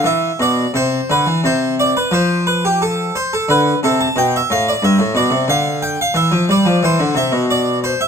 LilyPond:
<<
  \new Staff \with { instrumentName = "Harpsichord" } { \time 3/4 \key c \major \tempo 4 = 89 e''8 d''8 c''8 b'8 c''8 d''16 b'16 | c''8 b'16 g'16 a'8 c''16 a'16 b'8 a'16 a''16 | g''16 e''16 f''16 d''16 e''8 d''8 f''8 g''16 f''16 | e''8 d''8 c''8 e''8 d''8 c''16 e''16 | }
  \new Staff \with { instrumentName = "Harpsichord" } { \clef bass \time 3/4 \key c \major e8 b,8 c8 d16 e16 c4 | f2 d8 c8 | b,8 a,8 g,16 a,16 b,16 c16 d4 | e16 f16 g16 f16 e16 d16 c16 b,4~ b,16 | }
>>